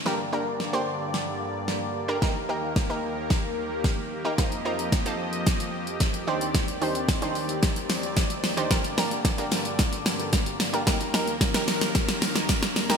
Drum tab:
HH |----------------|----------------|xx-xxx-xxx-xxx-x|xxoxxxoxxxoxxxox|
SD |o---o---o---o---|o---o---o---o---|o---o---o---o---|o---o---o-o-o-o-|
BD |----------------|o---o---o---o---|o---o---o---o---|o---o---o---o---|

HH |xxoxxxoxxxoxxxox|xxoxxxoxxxoxxxox|
SD |o-o-o-o-o-o-o-o-|o-o-oooooooooooo|
BD |o---o---o---o---|o---o---o---o---|